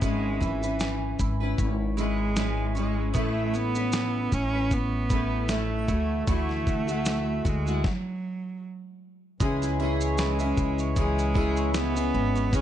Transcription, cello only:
0.04 G#3
0.44 E3
1.99 G#3
2.77 G#3
3.16 A3
3.55 B3
4.33 C#4
4.73 B3
5.51 A3
6.30 A3
7.48 G#3
7.87 F#3
10.21 G#3
10.99 G#3
11.78 B3
12.56 C#4

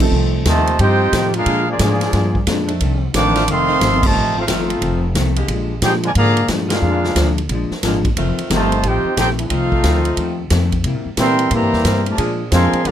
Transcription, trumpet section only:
0.48 F4 C5 D#5 A5
0.82 F4 C5 D#5 G5
1.37 D4 G#4 A#4 F5
1.70 A#3 F4 G#4 D5
1.83 A#3 F4 G#4 D5
3.16 C5 F5 A5 D6
3.51 A4 D#5 F5 C6
4.06 F4 C5 D#5 A5
4.40 D#4 A4 C5 F5
4.51 D#4 A4 C5 F5
5.84 D#4 G#4 C5 G5
6.06 F4 A#4 D5 G#5
6.17 G#4 D5 F5 A#5
6.72 D4 G#4 A#4 F5
8.54 F4 C5 D#5 A5
8.86 F4 C5 D#5 G5
9.19 D#4 A4 C5 G5
9.40 D#4 A4 C5 F5
11.20 A#4 E5 G5 C6
11.54 G4 C5 E5 A#5
12.09 F4 A#4 D5 A5
12.54 A#4 F5 G#5 C6
12.87 G#4 D5 F5 A#5

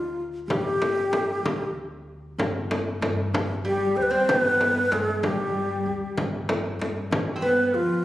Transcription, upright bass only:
Already playing: D2
0.48 G1
1.43 D2
2.38 G1
3.02 G2
3.34 G1
3.97 D2
4.28 G1
4.92 G2
5.23 G1
5.86 D2
6.17 G1
6.79 G2
7.11 G1
7.74 D2

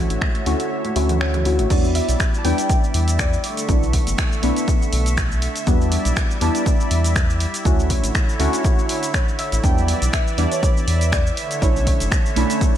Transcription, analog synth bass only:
0.10 A1
0.46 D2
0.96 D2
1.45 D2
1.59 A1
1.70 E2
2.09 B1
2.45 E2
2.94 E2
3.69 B1
4.07 F#1
4.43 B1
4.93 B1
5.67 E2
6.05 B1
6.41 E2
6.91 E2
7.65 D2
8.04 A1
8.40 D2
9.52 A1
9.64 E2
10.02 B1
10.38 E2
10.88 E2
11.62 B1
12.00 F#1
12.36 B1

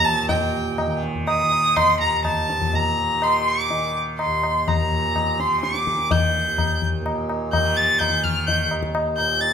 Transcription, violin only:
0.05 A5
0.29 G5
1.28 D#6
1.76 C6
2.00 A#5
2.25 A5
2.75 A#5
3.23 C6
3.48 D6
4.19 C6
4.68 A#5
5.40 C6
5.64 D6
6.11 G6
7.52 G6
7.77 A6
7.99 G6
8.24 F6
8.47 G6
9.17 G6
9.41 A6

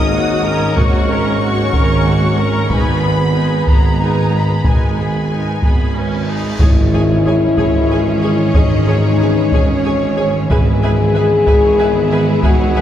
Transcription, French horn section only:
Already playing: D#4
0.76 C#4
2.70 B3
3.68 B3
4.65 G#3
6.60 E4
8.56 D#4
9.53 C#4
10.52 G#4
12.42 F#4

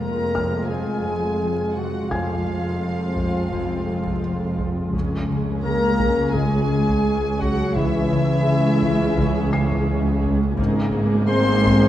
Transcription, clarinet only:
0.00 A#4
0.69 G#4
1.77 F#4
2.11 F4
5.63 A#4
6.33 G#4
7.42 F#4
7.76 E4
11.29 C5

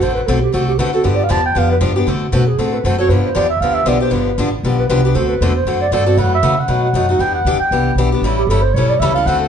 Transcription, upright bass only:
0.01 A1
0.28 B1
0.54 C2
0.78 D2
1.05 G2
1.30 E2
1.56 F2
1.81 G2
2.07 D3
2.33 B2
2.58 A2
2.84 F#2
3.09 G2
3.35 E2
3.60 D2
3.85 B1
4.11 G1
4.38 A1
4.63 B1
4.89 C2
5.15 D2
5.41 E2
5.65 F#2
5.91 G2
6.17 F#2
6.43 C#3
6.68 B2
6.93 F#2
7.19 E2
7.45 D2
7.60 muted upright bass stroke
7.71 C2
7.95 B1
8.21 A1
8.47 G1
8.74 B1
9.00 C#2
9.26 D2

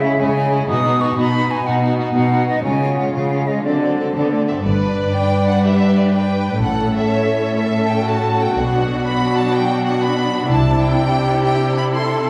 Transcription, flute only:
Already playing: E5
0.20 G#5
0.68 D#6
1.01 C#6
1.19 B5
1.51 G#5
1.66 F#5
2.14 F#5
2.48 D#5
2.63 G#5
2.96 F#5
3.14 F5
3.47 D#5
3.63 D5

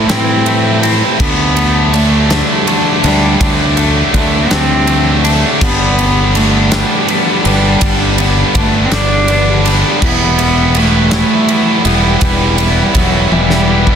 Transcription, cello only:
Already playing: A3
0.09 C4
1.19 B3
1.94 A3
3.04 G3
4.15 A3
4.51 C4
5.62 B3
6.36 A3
7.45 G3
8.56 A3
8.85 C4
8.93 D4
10.03 B3
10.77 A3
11.87 G3
12.80 G3
12.95 F#3
13.33 G3

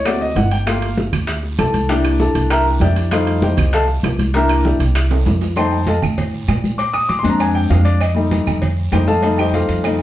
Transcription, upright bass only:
Already playing: D2
0.35 G1
1.13 D2
1.59 C2
2.35 C2
2.81 F2
3.57 C2
4.03 C2
4.80 C2
5.26 F2
6.03 A2
6.48 A#2
7.24 F2
7.70 F2
8.46 F2
8.92 F2
9.68 F2

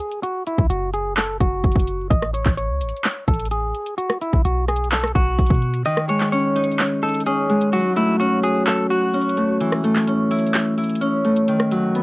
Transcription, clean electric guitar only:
Already playing: G#4
0.23 F#4
0.47 E4
0.70 F#4
0.94 G#4
1.17 A4
1.40 F#4
2.10 D#5
2.34 C#5
2.57 C#5
3.28 A4
3.51 G#4
3.98 F#4
4.22 E4
4.45 F#4
4.69 G#4
4.92 A4
5.15 F#4
5.86 D#5
6.09 C#5
6.32 C#5
7.03 A4
7.26 G#4
7.73 F#4
7.97 E4
8.20 F#4
8.43 G#4
8.67 A4
8.90 F#4

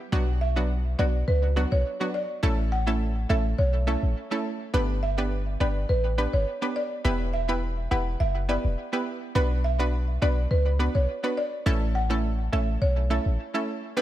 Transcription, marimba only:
0.41 E5
0.99 D5
1.28 B4
1.72 C#5
2.14 D5
2.72 F#5
3.30 E5
3.59 C#5
3.87 E5
5.03 E5
5.60 D5
5.89 B4
6.33 C#5
6.76 D5
7.34 E5
7.91 F#5
8.20 E5
8.49 D5
9.64 E5
10.22 D5
10.51 B4
10.95 C#5
11.37 D5
11.95 F#5
12.53 E5
12.82 C#5
13.11 E5

